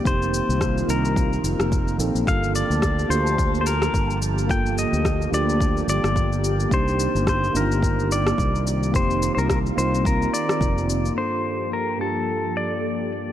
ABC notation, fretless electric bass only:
X:1
M:4/4
L:1/16
Q:"Swing 16ths" 1/4=108
K:Gm
V:1 name="Fretless electric bass" clef=bass
F,,,2 z C,,2 z C,,3 z F,,, F,,,3 B,,, B,,, | G,,,2 z D,,2 z D,,4- D,, z G,,,4- | G,,,2 z D,,2 z D,,3 z G,,, G,,,4 z | C,,2 z G,,,2 z G,,,4- G,,, z C,,4 |
F,,,2 z C,,2 z C,,3 z3 F,,,3 z | z16 |]